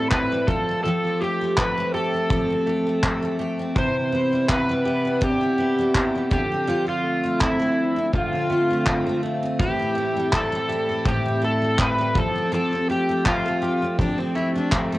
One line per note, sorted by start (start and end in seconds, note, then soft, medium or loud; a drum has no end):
0.00 0.56 A2 medium
0.00 0.48 E3 medium
0.00 0.31 G3 medium
0.00 1.21 A3 medium
0.00 0.11 C4 medium
0.00 0.56 E4 medium
0.00 0.88 G4 medium
0.00 0.10 A4 medium
0.11 0.68 C4 medium
0.11 1.58 C4 medium
0.11 0.49 B4 medium
0.11 kick medium
0.11 clap medium
0.32 0.88 G3 medium
0.47 0.84 F3 medium
0.47 0.83 F3 medium
0.47 0.82 A4 medium
0.47 kick medium
0.69 1.04 C4 medium
0.84 3.75 F3 medium
0.84 2.29 F3 medium
0.84 1.21 G4 medium
0.84 1.22 A4 medium
1.05 1.58 C4 soft
1.21 2.65 A3 medium
1.21 1.58 G4 medium
1.21 1.93 G4 medium
1.41 1.76 A3 medium
1.57 2.13 C4 medium
1.57 2.30 C4 medium
1.57 1.94 B4 medium
1.57 kick medium
1.57 clap loud
1.78 2.86 A3 medium
1.94 4.85 G4 medium
1.94 2.30 G4 medium
1.94 3.36 A4 medium
2.14 2.50 C4 soft
2.30 3.84 F3 medium
2.30 3.03 C4 medium
2.30 2.67 G4 medium
2.30 kick loud
2.50 3.03 C4 soft
2.67 3.39 A3 medium
2.67 3.39 G4 medium
2.87 3.21 A3 soft
3.03 3.59 C4 medium
3.03 4.15 C4 medium
3.03 kick medium
3.03 clap medium
3.23 3.84 A3 soft
3.39 3.84 A3 soft
3.39 3.76 G4 medium
3.59 4.48 C4 medium
3.76 5.20 C3 medium
3.76 6.31 E3 medium
3.76 4.11 E4 medium
3.76 4.51 C5 medium
3.76 kick loud
4.12 5.58 B3 medium
4.12 4.84 E4 medium
4.33 4.68 G3 medium
4.49 5.04 B3 medium
4.49 5.21 E4 medium
4.49 5.25 B4 medium
4.49 kick medium
4.49 clap loud
4.69 5.77 G3 medium
4.85 5.20 E4 medium
4.85 6.39 G4 medium
5.05 5.40 B3 soft
5.21 6.39 C3 medium
5.21 5.42 D4 medium
5.21 5.57 E4 medium
5.21 6.28 G4 medium
5.21 kick loud
5.41 5.93 B3 medium
5.41 5.94 E4 soft
5.58 6.40 B3 soft
5.58 6.39 E4 medium
5.79 6.14 G3 medium
5.94 6.39 B3 medium
5.94 6.40 E4 medium
5.94 kick medium
5.94 clap medium
6.15 6.40 G3 medium
6.31 6.66 D3 medium
6.31 6.67 F3 medium
6.31 6.89 G4 medium
6.31 kick medium
6.52 6.86 C4 medium
6.67 8.12 D3 medium
6.67 9.59 F3 medium
6.67 7.04 F4 medium
6.87 7.39 C4 medium
6.87 7.42 F4 medium
7.04 8.50 A3 medium
7.24 7.59 A3 medium
7.40 7.96 C4 medium
7.40 8.13 C4 medium
7.40 8.15 E4 medium
7.40 kick medium
7.40 clap medium
7.60 8.70 A3 medium
7.96 8.32 C4 medium
8.13 9.68 D3 medium
8.13 8.86 C4 medium
8.13 8.48 F4 medium
8.13 9.20 F4 medium
8.13 kick loud
8.33 8.86 C4 medium
8.50 9.22 A3 medium
8.50 9.22 F4 medium
8.70 9.06 A3 medium
8.86 9.42 C4 medium
8.86 10.32 C4 medium
8.86 kick medium
8.86 clap medium
9.06 10.16 A3 medium
9.23 9.95 A3 soft
9.23 9.60 F4 medium
9.43 9.79 C4 medium
9.59 11.05 A2 medium
9.59 12.15 E3 medium
9.59 9.94 E4 medium
9.59 10.36 G4 medium
9.59 kick loud
9.79 10.32 C4 medium
9.95 11.43 A3 medium
9.95 10.68 E4 medium
10.17 10.52 G3 medium
10.32 10.89 C4 medium
10.32 11.06 C4 medium
10.32 11.09 A4 medium
10.32 kick medium
10.32 clap loud
10.52 11.61 G3 medium
10.69 11.05 E4 medium
10.69 12.55 G4 medium
10.89 11.25 C4 soft
11.06 12.24 A2 medium
11.06 11.78 C4 medium
11.06 11.41 E4 medium
11.06 11.41 G4 medium
11.06 kick loud
11.26 11.78 C4 medium
11.42 12.88 A3 medium
11.42 12.23 E4 medium
11.42 11.81 A4 medium
11.62 11.98 G3 medium
11.79 13.25 C4 medium
11.79 12.35 C4 medium
11.79 12.18 B4 medium
11.79 kick medium
11.79 clap medium
11.99 12.55 G3 medium
12.15 12.51 F3 medium
12.15 12.53 A4 medium
12.15 kick loud
12.36 12.71 C4 medium
12.52 13.98 F3 medium
12.52 14.98 F3 medium
12.52 12.89 G4 medium
12.52 12.90 A4 medium
12.73 13.24 C4 medium
12.89 14.34 A3 medium
12.89 13.61 G4 medium
12.89 13.27 G4 medium
13.09 13.44 A3 soft
13.25 13.81 C4 medium
13.25 13.98 C4 medium
13.25 13.96 F4 medium
13.25 kick medium
13.25 clap medium
13.46 14.54 A3 medium
13.62 13.99 G4 medium
13.62 14.98 G4 medium
13.82 14.17 C4 soft
13.99 14.98 F3 medium
13.99 14.71 C4 medium
13.99 14.20 D4 medium
13.99 14.35 G4 medium
13.99 kick loud
14.18 14.71 C4 medium
14.18 14.37 C4 medium
14.35 14.98 A3 medium
14.35 14.55 E4 medium
14.35 14.98 G4 medium
14.56 14.91 A3 medium
14.56 14.74 D4 medium
14.72 14.98 C4 medium
14.72 14.91 C4 medium
14.72 14.98 C4 medium
14.72 kick medium
14.72 clap medium
14.92 14.98 A3 medium